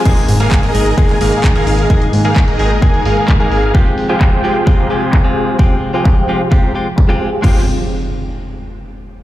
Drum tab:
CC |x---------------|----------------|----------------|----------------|
HH |xxoxxxoxxxoxxxox|xxoxxxoxxxoxxxox|xxox-xo-xxo---ox|--o-------------|
CP |----x----x--x---|----x-------x---|----x----x--x---|----x-------x---|
BD |o---o---o---o---|o---o---o---o---|o---o---o---o---|o---o---o---o---|

CC |x---------------|
HH |----------------|
CP |----------------|
BD |o---------------|